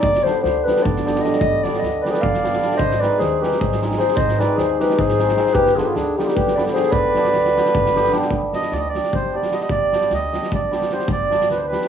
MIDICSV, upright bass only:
0, 0, Header, 1, 2, 480
1, 0, Start_track
1, 0, Tempo, 394477
1, 49, Time_signature, 7, 3, 24, 8
1, 14456, End_track
2, 0, Start_track
2, 0, Title_t, "Upright bass"
2, 0, Program_c, 0, 32
2, 39, Note_on_c, 0, 31, 98
2, 341, Note_off_c, 0, 31, 0
2, 533, Note_on_c, 0, 38, 86
2, 836, Note_off_c, 0, 38, 0
2, 1034, Note_on_c, 0, 31, 102
2, 1444, Note_off_c, 0, 31, 0
2, 1716, Note_on_c, 0, 31, 108
2, 2017, Note_off_c, 0, 31, 0
2, 2217, Note_on_c, 0, 38, 91
2, 2518, Note_off_c, 0, 38, 0
2, 2720, Note_on_c, 0, 31, 99
2, 3127, Note_off_c, 0, 31, 0
2, 3403, Note_on_c, 0, 32, 96
2, 3701, Note_off_c, 0, 32, 0
2, 3901, Note_on_c, 0, 39, 89
2, 4199, Note_off_c, 0, 39, 0
2, 4401, Note_on_c, 0, 32, 84
2, 4807, Note_off_c, 0, 32, 0
2, 5074, Note_on_c, 0, 32, 98
2, 5374, Note_off_c, 0, 32, 0
2, 5570, Note_on_c, 0, 39, 85
2, 5871, Note_off_c, 0, 39, 0
2, 6074, Note_on_c, 0, 32, 96
2, 6481, Note_off_c, 0, 32, 0
2, 6746, Note_on_c, 0, 31, 104
2, 7048, Note_off_c, 0, 31, 0
2, 7246, Note_on_c, 0, 38, 75
2, 7548, Note_off_c, 0, 38, 0
2, 7750, Note_on_c, 0, 31, 82
2, 8159, Note_off_c, 0, 31, 0
2, 8428, Note_on_c, 0, 31, 91
2, 8729, Note_off_c, 0, 31, 0
2, 8925, Note_on_c, 0, 38, 86
2, 9228, Note_off_c, 0, 38, 0
2, 9429, Note_on_c, 0, 31, 99
2, 9839, Note_off_c, 0, 31, 0
2, 10110, Note_on_c, 0, 31, 80
2, 10413, Note_off_c, 0, 31, 0
2, 10608, Note_on_c, 0, 38, 97
2, 10912, Note_off_c, 0, 38, 0
2, 11112, Note_on_c, 0, 31, 75
2, 11524, Note_off_c, 0, 31, 0
2, 11799, Note_on_c, 0, 31, 86
2, 12101, Note_off_c, 0, 31, 0
2, 12303, Note_on_c, 0, 38, 90
2, 12605, Note_off_c, 0, 38, 0
2, 12809, Note_on_c, 0, 31, 76
2, 13218, Note_off_c, 0, 31, 0
2, 13492, Note_on_c, 0, 31, 102
2, 13792, Note_off_c, 0, 31, 0
2, 13992, Note_on_c, 0, 38, 89
2, 14292, Note_off_c, 0, 38, 0
2, 14456, End_track
0, 0, End_of_file